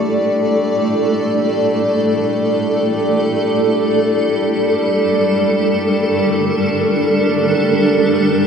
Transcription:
Already playing: G3 A3 D4 E4 A4 D5
3.73 G3
4.61 A#4
4.81 D4

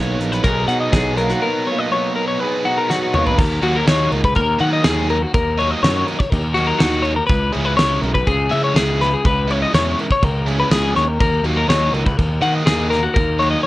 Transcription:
Already playing: B1 B2 F#3 A#3 B3 D#4 C#5
0.19 A#1 A#4, closed hi-hat
0.32 B4, closed hi-hat
0.43 B1 B2 F#3 B3 D#4 G#4 A#4, kick, closed hi-hat
0.67 B2 F#3 B3 D#4 F#5, closed hi-hat
0.80 D#5
0.91 B1 B2 F#3 B3 D#4 G#4, kick, snare, closed hi-hat
1.15 F#3 B3 D#4 A#4, closed hi-hat
1.21 A#3
1.30 F#4, closed hi-hat
1.39 B2 F#3 B3 D#4 A#4
1.45 B2
1.66 F#3 B3 D#4 C#5
1.71 A#3
1.79 D#5
1.90 B2 F#3 B3 D#4 C#5
2.15 A#4
2.27 C#5
2.38 B2 F#3 B3 D#4 B4
2.42 G#4
2.63 F#3 B3 D#4 F#4
2.78 A#4
2.88 B2 F#3 B3 D#4 F#4, snare
3.13 F#3 A#3 B3 D#4 C#5, mid tom
3.27 B4, floor tom
3.38 D#2 A#4, kick, crash
3.62 D#2 D#3 F#3 A#3 D#4 F#4, crash
3.76 A#4
3.86 D#2 D#3 F#3 A#3 D#4 C#5, snare, crash
4.11 C#2 A#4, crash
4.24 B4, kick
4.34 D#2 A#4, kick, crash
4.59 D#3 F#3 A#3 D#4 F#5, crash
4.73 D#5
4.84 D#2 D#3 F#3 A#3 D#4 G#4, snare, crash
5.10 A#4, crash
5.22 F#4
5.34 D#2 A#4, kick, crash
5.57 D#3 F#3 A#3 D#4 C#5, crash
5.71 D#5
5.83 F#2 D#3 F#3 A#3 D#4 C#5, snare, crash
6.07 A#4, crash
6.19 C#5, kick
6.30 D#2 A#4, kick, crash
6.55 D#3 F#3 A#3 D#4 F#4, crash
6.67 A#4
6.79 D#2 D#3 F#3 A#3 D#4 F#4, snare, crash
7.03 C#5, crash
7.16 A#4
7.27 C#2 B4, kick, crash
7.52 C#2 C#3 G#3 C#4 E4 G#4, crash
7.65 B4
7.77 C#2 C#3 G#3 C#4 E4 C#5, snare, crash
8.01 B1 A#4, crash
8.14 B4, kick
8.27 C#2 G#4, kick, crash
8.49 C#3 G#3 C#4 E4 E5, crash
8.64 C#5
8.74 C#2 C#3 G#3 C#4 E4 G#4, snare, crash
9.01 B4, snare, crash
9.14 G#4
9.25 C#2 B4, kick, crash
9.48 C#3 G#3 C#4 E4 C#5, crash
9.63 D#5
9.73 E2 C#3 G#3 C#4 E4 C#5, snare, crash
9.99 A#4, crash
10.11 C#5, kick
10.23 C#2 A#4, kick, crash
10.47 C#3 G#3 C#4 E4 G#4, crash
10.60 B4
10.71 C#2 C#3 G#3 C#4 E4 G#4, snare, crash
10.97 D#2 C#5, snare, crash
11.09 A#4
11.20 D#2 A#4, kick, crash
11.44 D#2 D#3 F#3 A#3 D#4 F#4, crash
11.58 A#4
11.68 D#2 D#3 F#3 A#3 D#4 C#5, snare, crash
11.93 C#2 A#4, crash
12.06 B4, kick
12.17 D#2 A#4, kick, crash
12.41 D#3 F#3 A#3 D#4 F#5, crash
12.55 D#5
12.66 D#2 D#3 F#3 A#3 D#4 G#4, snare, crash
12.91 A#4, snare, crash
13.03 F#4
13.14 D#2 A#4, kick, crash
13.39 D#3 F#3 A#3 D#4 C#5, crash
13.51 D#5
13.63 C#5

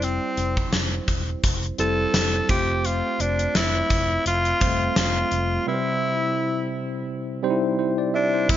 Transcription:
Already playing: F1 G3 C4 E4 C5
0.02 C4, closed hi-hat
0.37 F1, closed hi-hat
0.57 kick
0.73 F1, snare, closed hi-hat
1.08 E1, kick, closed hi-hat
1.44 F1, kick, closed hi-hat
1.63 closed hi-hat
1.78 F1 G3 C4 E4 A4 C5, closed hi-hat
2.14 F1, snare, closed hi-hat
2.49 F1 A3 C4 F4 G4 C5, kick, closed hi-hat
2.85 F4, closed hi-hat
3.20 F1 D4, closed hi-hat
3.39 closed hi-hat
3.55 F1 E4, snare, closed hi-hat
3.90 F1, kick, closed hi-hat
4.26 F1 F4, closed hi-hat
4.45 closed hi-hat
4.60 F1 G3 C4 F4 C5, kick, closed hi-hat
4.67 A3
4.96 F1 F4, snare, closed hi-hat
5.31 F1, closed hi-hat
5.66 C3 G3 C4 E4 B4
5.74 C5
7.43 G3 C4 D#4 C5
7.50 E4
7.79 E4 C5
7.98 D5
8.14 D4 G4 E5
8.34 E4 C5
8.49 F1 F3 A3 C4 E4 C5, kick, crash

